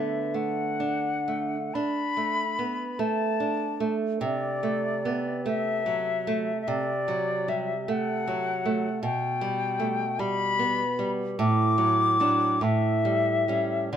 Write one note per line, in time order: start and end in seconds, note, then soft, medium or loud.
0.00 1.71 D3 soft
0.00 0.17 A3 soft
0.00 0.35 B3 soft
0.00 0.36 E5 soft
0.34 1.08 A3 soft
0.34 1.75 F#5 medium
0.80 1.56 D4 soft
1.28 2.01 A3 soft
1.74 2.43 D4 soft
1.74 3.01 B5 medium
2.17 2.83 A3 soft
2.59 3.00 B3 soft
2.99 3.65 A3 soft
2.99 3.95 A5 medium
3.40 4.06 D4 soft
3.80 4.22 A3 soft
4.21 6.63 C3 soft
4.21 5.42 D5 medium
4.63 5.29 A3 soft
5.05 5.46 B3 soft
5.46 6.11 A3 soft
5.46 6.59 E5 medium
5.86 6.51 F#3 soft
6.27 6.92 A3 soft
6.61 6.70 E5 soft
6.68 8.98 C3 soft
6.68 7.51 D5 medium
7.08 7.72 F#3 soft
7.48 7.88 G3 soft
7.48 7.92 E5 medium
7.88 8.50 A3 soft
7.88 9.03 F#5 medium
8.28 8.88 F#3 soft
8.65 9.03 A3 soft
9.03 11.34 B2 soft
9.03 10.21 G5 medium
9.41 10.03 G3 soft
9.80 10.19 A3 soft
10.19 10.82 G3 soft
10.19 11.12 B5 medium
10.59 11.22 B3 soft
10.99 11.38 G3 soft
11.39 12.59 A2 medium
11.39 12.65 D6 medium
11.78 12.19 F#3 soft
12.20 12.59 F#3 soft
12.20 12.59 D4 soft
12.61 13.89 A2 soft
12.61 13.93 E5 medium
13.05 13.47 G3 soft
13.48 13.89 G3 soft
13.48 13.90 C#4 soft
13.93 13.97 D3 soft
13.93 13.97 D5 soft